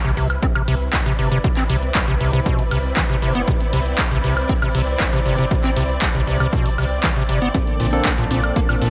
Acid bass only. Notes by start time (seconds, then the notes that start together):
0.05 C3
0.17 C3
0.43 C4
0.55 C3
0.68 C3
0.93 C2
1.06 C3
1.19 C3
1.32 C3
1.44 B2
1.57 C4
1.70 C3
1.95 C2
2.08 C3
2.21 C3
2.33 C3
2.46 B2
2.59 C3
2.71 C3
2.97 E3
3.10 C3
3.22 C3
3.35 B3
3.48 C3
3.73 C3
4.11 C3
4.24 C3
4.49 C4
4.62 C3
4.75 C3
5.00 C2
5.13 C3
5.26 C3
5.38 C3
5.51 B2
5.64 C4
5.76 C3
6.02 C2
6.15 C3
6.27 C3
6.40 C3
6.53 B2
6.66 C3
6.78 C3
7.04 E3
7.16 C3
7.29 C3
7.42 B3
7.54 A#2
7.80 A#2
8.18 A#2
8.31 A#2
8.56 A#3
8.69 A#2
8.82 A#2